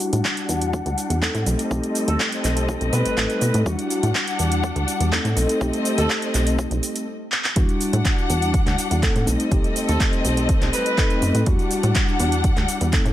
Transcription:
Already playing: G3 D4 E4 F#4 F#5
0.00 open hi-hat, cabasa
0.13 A2, closed hi-hat, cabasa
0.25 kick, clap, cabasa
0.37 closed hi-hat, cabasa
0.49 E2, open hi-hat, cabasa
0.62 closed hi-hat, cabasa
0.73 kick, cabasa
0.86 D2, closed hi-hat, cabasa
0.98 open hi-hat, cabasa
1.10 E2, closed hi-hat, cabasa
1.22 A3 C4 D#4 A4, kick, clap, cabasa
1.35 A2, closed hi-hat, cabasa
1.46 B1 C4 A4 D#5, open hi-hat, cabasa
1.59 closed hi-hat, cabasa
1.70 B1 A3 C4 D#4 G4, kick, cabasa
1.83 closed hi-hat, cabasa
1.95 open hi-hat, cabasa
2.08 D#2 A4, closed hi-hat, cabasa
2.20 kick, clap, cabasa
2.32 closed hi-hat, cabasa
2.44 B1, clap, open hi-hat, cabasa
2.57 closed hi-hat, cabasa
2.69 kick, cabasa
2.81 B1, closed hi-hat, cabasa
2.93 B2 B4, open hi-hat, cabasa
3.06 A1, closed hi-hat, cabasa
3.17 A1 A3 C4 D#4 A4, kick, clap, open hi-hat, cabasa
3.30 closed hi-hat, cabasa
3.41 B2, open hi-hat, cabasa
3.54 A2, closed hi-hat, cabasa
3.65 E2 G3 D4 E4 F#4 F#5, kick, cabasa
3.79 closed hi-hat, cabasa
3.90 open hi-hat, cabasa
4.03 A2, closed hi-hat, cabasa
4.15 kick, clap, cabasa
4.27 closed hi-hat, cabasa
4.39 E2, open hi-hat, cabasa
4.52 closed hi-hat, cabasa
4.63 kick, cabasa
4.76 D2, closed hi-hat, cabasa
4.88 open hi-hat, cabasa
5.00 E2, closed hi-hat, cabasa
5.12 A3 C4 D#4 A4, kick, clap, cabasa
5.25 A2, closed hi-hat, cabasa
5.36 B1 C4 A4 D#5, open hi-hat, cabasa
5.49 closed hi-hat, cabasa
5.60 B1 A3 C4 D#4 G4, kick, cabasa
5.73 closed hi-hat, cabasa
5.85 open hi-hat, cabasa
5.98 D#2 A4, closed hi-hat, cabasa
6.10 kick, clap, cabasa
6.22 closed hi-hat, cabasa
6.34 B1, clap, open hi-hat, cabasa
6.47 closed hi-hat, cabasa
6.59 kick, cabasa
6.71 B1, closed hi-hat, cabasa
6.83 open hi-hat, cabasa
6.96 closed hi-hat, cabasa
7.32 clap
7.44 clap
7.56 E2 G3 D4 E4 F#4 F#5, kick, closed hi-hat, cabasa
7.69 closed hi-hat, cabasa
7.81 open hi-hat, cabasa
7.93 A2, closed hi-hat, cabasa
8.05 kick, clap, closed hi-hat, cabasa
8.18 cabasa
8.30 E2, open hi-hat, cabasa
8.42 closed hi-hat, cabasa
8.54 kick, closed hi-hat, cabasa
8.66 D2, clap, closed hi-hat, cabasa
8.78 open hi-hat, cabasa
8.91 E2, closed hi-hat, cabasa
9.02 A3 C4 D#4 A4, kick, clap, closed hi-hat, cabasa
9.15 A2, closed hi-hat, cabasa
9.27 B1 C4 A4 D#5, open hi-hat, cabasa
9.40 closed hi-hat, cabasa
9.51 B1 A3 C4 D#4 G4, kick, closed hi-hat, cabasa
9.64 closed hi-hat, cabasa
9.76 open hi-hat, cabasa
9.88 D#2 A4, closed hi-hat, cabasa
10.00 kick, clap, closed hi-hat, cabasa
10.13 closed hi-hat, cabasa
10.25 B1, open hi-hat, cabasa
10.37 closed hi-hat, cabasa
10.49 kick, closed hi-hat, cabasa
10.62 B1, clap, closed hi-hat, cabasa
10.73 B4, open hi-hat, cabasa
10.86 closed hi-hat, cabasa
10.98 A3 C4 D#4 A4, kick, clap, open hi-hat, cabasa
11.10 closed hi-hat, cabasa
11.22 F#2, open hi-hat, cabasa
11.35 A2, closed hi-hat, cabasa
11.46 E2 G3 D4 E4 F#4 F#5, kick, closed hi-hat, cabasa
11.59 closed hi-hat, cabasa
11.71 open hi-hat, cabasa
11.83 A2, closed hi-hat, cabasa
11.95 kick, clap, closed hi-hat, cabasa
12.08 cabasa
12.20 E2, open hi-hat, cabasa
12.32 closed hi-hat, cabasa
12.44 kick, closed hi-hat, cabasa
12.57 D2, clap, closed hi-hat, cabasa
12.68 open hi-hat, cabasa
12.81 E2, closed hi-hat, cabasa
12.93 A3 C4 D#4 A4, kick, clap, closed hi-hat, cabasa
13.05 A2, closed hi-hat, cabasa

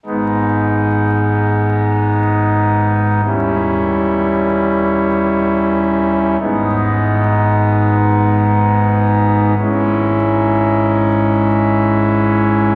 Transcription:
0.06 G#1 G#2 G#3 B3 D#4
3.26 D#1 D#2 G3 C#4 E4
6.40 G#1 G#2 G#3 B3 D#4
9.59 G#1 G#2 G#3 C#4 E4

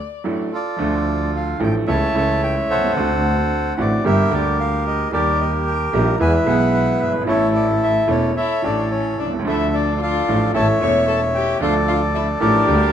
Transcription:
Already playing: D5
0.24 A1 A2 F#3 A3 D4 A4
0.52 F4 A4 D5
0.76 D2 D3 F3 A3 D4
0.81 A4
1.36 F5
1.59 A1 A2 F3 A3 D4 A4 G5
1.87 C#2 C#3 E3 A3 C#4 A4 C#5 E5 A5
2.14 C#2 C#3 E3 A3 C#4 A4 A5
2.43 G5
2.68 C2 A4 C5 F#5
2.76 B1
2.84 C2
2.90 C#2
2.95 D2 D3 A3 C4
2.99 F#4
3.77 A1 A2 D3 A3 C4 F#4 D5
4.04 G1 G2 D3 G3 A#3 G4 A#4 E5
4.30 D2 D3 G3 A#3 G4 D5
4.60 F5
4.87 D#5
5.12 D#2 D#3 G3 A#3 G4 A#4 D5
5.41 D#5
5.67 G5
5.93 A#1 A#2 D#3 G3 A#3 G4 A#5
6.20 E2 E3 G#3 B3 G#4 B4 E5 G#5
6.44 B1 B2 E3 G#3 B3 G#4
6.49 F#5
6.74 F#5
7.01 G1 E5
7.07 F#1
7.13 G1
7.21 G#1
7.25 A1 A2 E3 A3 C#4 E4 A4 C#5
7.30 A4
7.55 D5
7.84 E5
8.07 E1 E2 E3 A3 C#4 A4 C#5
8.36 E4 A4 C#5 E5
8.62 A1 A2 E3 A3 C#4 D4 A4 D5
8.91 C#4 C#5
9.19 C2 D4 D5
9.25 B1
9.33 C2
9.39 C#2 F3
9.44 D2 D3 A3 D4 E4 A4
9.48 E5
9.74 D4 D5
10.00 F4 A4 D5 F5
10.27 A1 A2 F3 A3 D4 A4
10.54 A1 A2 E3 A3 C#4 A4 C#5 E5 A5
10.80 E1 E2 E3 A3 C#4 A4 C#5 C#6
11.08 A4 A5
11.35 G4 G5
11.59 D2 D3 F3 A3 D4 F4 A4 D5 F5
11.88 F4 F5
12.15 E4 E5
12.40 A1 A2 F3 A3 D4 G4 A4 A#4 D5
12.67 D2 D3 G3 A#3 G4

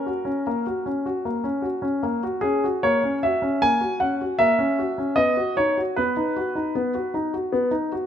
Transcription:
Already playing: A#4
0.06 F#4
0.25 C#4
0.47 A#3
0.67 F#4
0.86 C#4
1.06 F#4
1.25 A#3
1.44 C#4
1.62 F#4
1.82 C#4
2.03 A#3
2.23 F#4
2.41 C#4 G#4
2.64 F#4
2.83 A#3 C#5
3.04 C#4
3.23 F#4 E5
3.42 C#4
3.62 A#3 G#5
3.81 F#4
4.00 C#4 F#5
4.21 F#4
4.39 A#3 E5
4.59 C#4
4.79 F#4
4.98 C#4
5.16 B3 D#5
5.37 F#4
5.57 D#4 C#5
5.78 F#4
5.96 B3 B4
6.17 D#4
6.37 F#4
6.55 D#4
6.75 B3
6.95 F#4
7.14 D#4
7.34 F#4
7.52 B3
7.71 D#4
7.92 F#4

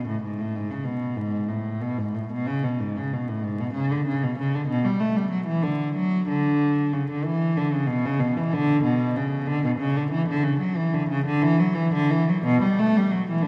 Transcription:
0.08 A2
0.23 G#2
0.40 A2
0.55 G#2
0.70 C#3
0.84 B2
1.16 G#2
1.48 A2
1.81 B2
1.98 G#2
2.14 A2
2.32 B2
2.47 C#3
2.63 B2
2.80 G#2
2.96 C#3
3.13 B2
3.28 A2
3.43 G#2
3.60 B2
3.73 C#3
3.91 D3
4.06 C#3
4.23 B2
4.38 C#3
4.55 D3
4.68 B2
4.84 G3
4.99 A3
5.16 G3
5.31 F#3
5.46 E3
5.63 D3
5.96 F#3
6.28 D3
6.92 C#3
7.10 D3
7.24 E3
7.56 D3
7.73 C#3
7.86 B2
8.05 C#3
8.19 B2
8.37 E3
8.53 D3
8.83 B2
9.16 C#3
9.47 D3
9.65 B2
9.79 C#3
9.96 D3
10.11 E3
10.28 D3
10.44 C#3
10.60 F#3
10.76 E3
10.93 D3
11.09 C#3
11.26 D3
11.42 E3
11.60 F#3
11.74 E3
11.94 D3
12.10 E3
12.29 F#3
12.45 B2
12.63 G3
12.79 A3
12.97 G3
13.11 F#3
13.30 E3
13.42 D3

